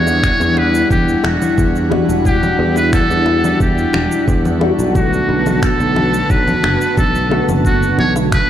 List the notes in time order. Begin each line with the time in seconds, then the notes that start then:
Already playing: E2 E3 G3 D4 E4 C#5 F#5
0.07 high bongo, cabasa
0.23 finger snap, kick, cabasa
0.40 E2, low conga, cabasa
0.57 B4, high bongo
0.75 cabasa
0.90 E2 G4, kick, low conga, cabasa
1.08 cabasa
1.24 E1 F#4, finger snap, high bongo
1.42 low conga, cabasa
1.58 E2, kick, cabasa
1.76 cabasa
1.90 E3 G3 D4 F#4, high bongo, low conga
2.09 E1, cabasa
2.22 E3 G3, kick, cabasa
2.26 D4 G4 F#5
2.43 low conga, cabasa
2.59 E2
2.76 B4, high bongo, cabasa
2.93 A4, finger snap, kick, low conga, cabasa
3.10 E2, cabasa
3.26 high bongo
3.44 low conga, cabasa
3.60 E2 G4, kick, cabasa
3.78 cabasa
3.93 E1, finger snap, high bongo, low conga
4.12 cabasa
4.28 E2, kick, cabasa
4.45 low conga, cabasa
4.60 E3 G3 D4 F#4, high bongo
4.79 B1, cabasa
4.92 D3 A3 F#4 B4 A5, kick, low conga, cabasa
4.96 B3 F#4
5.13 cabasa
5.29 B1
5.46 high bongo, low conga, cabasa
5.63 A4, finger snap, kick, cabasa
5.80 B1, cabasa
5.96 high bongo, low conga
6.14 cabasa
6.30 B1 B4, kick, cabasa
6.48 low conga, cabasa
6.63 F#1, finger snap, high bongo
6.81 cabasa
6.97 B1 A4, kick, low conga, cabasa
7.15 cabasa
7.29 D3 A3 B3 F#4, high bongo
7.48 F#1, low conga, cabasa
7.61 D3 A3, kick
7.65 B3 F#4, cabasa
7.83 cabasa
7.98 B1 C#5, low conga
8.16 high bongo, cabasa
8.32 B4, finger snap, kick, cabasa